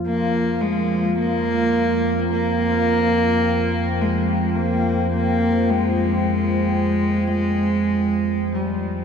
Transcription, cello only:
\new Staff \with { instrumentName = "Cello" } { \time 4/4 \key bes \dorian \tempo 4 = 53 bes8 aes8 bes4 bes4. aes8 | bes8 bes8 aes2~ aes8 g8 | }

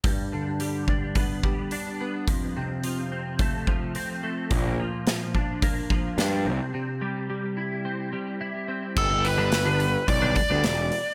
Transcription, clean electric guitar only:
\new Staff \with { instrumentName = "Clean electric guitar" } { \clef bass \time 4/4 \key g \mixolydian \tempo 4 = 108 g,8 d8 g8 d'8 b8 g8 d'8 b8 | f,8 c8 f8 c'8 a8 f8 c'8 a8 | bes,8 f8 f8 d'8 bes8 f8 d'8 c8 | c8 g8 g8 e'8 c'8 g8 e'8 c'8 |
r8. <d g b d'>16 r16 <d g b d'>16 r8. <d g b d'>16 r16 <d g b d'>16 r4 | }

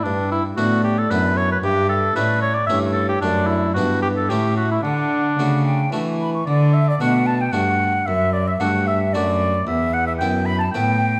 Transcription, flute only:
\new Staff \with { instrumentName = "Flute" } { \time 3/4 \key d \major \tempo 4 = 113 b'8 r8 d''2 | e''4 d''4 cis''4 | d''4 b'4 e''4 | fis''4 fis''8 g''8 a''8 b''16 cis'''16 |
d''8 e''16 d''16 fis''8 a''16 g''16 fis''4 | e''8 d''16 e''16 fis''8 e''8 d''4 | e''8 fis''16 e''16 g''8 b''16 a''16 g''4 | }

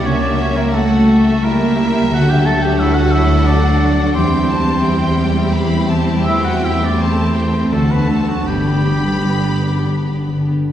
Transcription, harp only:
\new Staff \with { instrumentName = "Harp" } { \time 3/4 \key g \major \tempo 4 = 85 \tuplet 3/2 { <cis g e' g'>8 cis'8 g8 e'8 g'4 g8 cis'8 g8 } | \tuplet 3/2 { d8 fis8 d'8 a'8 fis'8 a'8 d'8 fis8 d'8 } | \tuplet 3/2 { e8 e'8 g8~ g8 c''8 g'8 g8 e'8 g8 } | \tuplet 3/2 { e8 e'8 a8 g'8 c''8 g'8 d8 a8 <fis' c''>8 } |
\tuplet 3/2 { g,8 d8 b8 g'8 b'8 g'8 b8 d8 b8 } | }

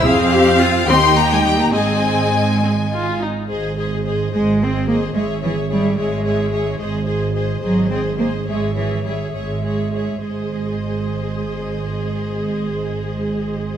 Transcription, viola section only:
\new Staff \with { instrumentName = "Viola section" } { \time 6/8 \key aes \major \tempo 4. = 69 << { c'4. ees'4. | c'4. c'8 f'8 ees'8 | aes'8 aes'8 aes'8 aes'8 aes'8 aes'8 | aes'8 aes'8 aes'8 aes'8 aes'8 aes'8 |
aes'8 aes'8 aes'8 aes'8 aes'8 aes'8 | aes'8 aes'8 aes'8 aes'8 aes'8 aes'8 | aes'2.~ | aes'2. | } \\ { aes'8 g'8 f'8 g'4. | aes'4. r4. | r2. | r2. |
r2. | r2. | r2. | r2. | } >> }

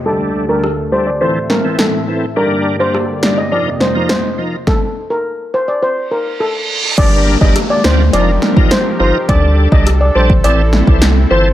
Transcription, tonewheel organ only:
\new Staff \with { instrumentName = "Tonewheel organ" } { \time 4/4 \key g \minor \tempo 4 = 104 <g d' a'>8. <g d' a'>16 r8 <g d' a'>16 r16 <e c' a'>16 r8 <e c' a'>16 r8 <e c' a'>16 r16 | <g d' bes'>8. <g d' bes'>16 r8 <g d' bes'>16 r16 <f ees' bes'>16 r8 <f ees' bes'>16 r8 <f ees' bes'>16 r16 | r1 | <g d' bes'>8. <g d' bes'>16 r8 <g d' bes'>16 r16 <f ees' bes'>16 r8 <f ees' bes'>16 r8 <f ees' bes'>16 r16 |
<g d' a'>8. <g d' a'>16 r8 <g d' a'>16 r16 <e c' a'>16 r8 <e c' a'>16 r8 <e c' a'>16 r16 | }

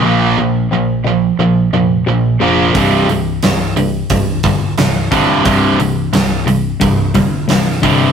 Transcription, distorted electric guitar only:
\new Staff \with { instrumentName = "Distorted electric guitar" } { \clef bass \time 4/4 \key bes \major \tempo 4 = 88 <bes, f bes>8 <bes, f>8 <bes, f>8 <bes, f>8 <bes, f>8 <bes, f>8 <bes, f>8 <bes, f bes>8 | <c, g, c>8 <c, g,>8 <c, g,>8 <c, g,>8 <c, g,>8 <c, g,>8 <c, g,>8 <c, g, c>8 | <c, g, c>8 <c, g,>8 <c, g,>8 <c, g,>8 <c, g,>8 <c, g,>8 <c, g,>8 <c, g, c>8 | }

